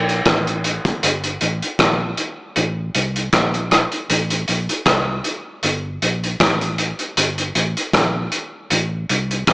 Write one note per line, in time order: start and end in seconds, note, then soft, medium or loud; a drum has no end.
0.00 0.21 A#1 medium
0.09 closed hi-hat soft
0.26 0.77 A1 medium
0.26 kick loud
0.26 cross-stick loud
0.26 closed hi-hat loud
0.47 closed hi-hat soft
0.64 closed hi-hat medium
0.85 kick medium
0.85 closed hi-hat soft
1.03 1.36 G1 medium
1.03 closed hi-hat loud
1.24 closed hi-hat medium
1.41 1.60 A1 loud
1.41 closed hi-hat medium
1.62 closed hi-hat medium
1.79 2.12 A#1 medium
1.79 kick loud
1.79 cross-stick loud
1.79 closed hi-hat loud
2.17 closed hi-hat medium
2.56 2.90 A1 loud
2.56 closed hi-hat medium
2.95 3.28 C2 medium
2.95 closed hi-hat medium
3.16 closed hi-hat medium
3.33 3.84 A#1 loud
3.33 kick loud
3.33 cross-stick loud
3.33 closed hi-hat loud
3.54 closed hi-hat soft
3.71 cross-stick medium
3.71 closed hi-hat medium
3.92 closed hi-hat soft
4.10 4.43 A1 loud
4.10 closed hi-hat loud
4.30 closed hi-hat medium
4.48 4.67 A#1 loud
4.48 closed hi-hat medium
4.69 closed hi-hat medium
4.86 5.19 C2 medium
4.86 kick loud
4.86 cross-stick loud
4.86 closed hi-hat loud
5.24 closed hi-hat medium
5.63 5.97 G1 loud
5.63 closed hi-hat medium
6.02 6.35 A#1 medium
6.02 closed hi-hat medium
6.24 closed hi-hat medium
6.40 6.92 A1 loud
6.40 kick loud
6.40 cross-stick loud
6.40 closed hi-hat loud
6.61 closed hi-hat soft
6.78 closed hi-hat medium
6.99 closed hi-hat soft
7.17 7.50 G1 medium
7.17 closed hi-hat loud
7.38 closed hi-hat medium
7.55 7.74 A1 medium
7.55 closed hi-hat medium
7.77 closed hi-hat medium
7.93 8.27 A#1 medium
7.93 kick loud
7.93 cross-stick loud
7.93 closed hi-hat loud
8.32 closed hi-hat medium
8.70 9.04 A1 loud
8.70 closed hi-hat medium
9.09 9.42 C2 loud
9.09 closed hi-hat medium
9.31 closed hi-hat medium
9.47 9.53 A#1 medium
9.47 kick loud
9.47 cross-stick loud
9.47 closed hi-hat loud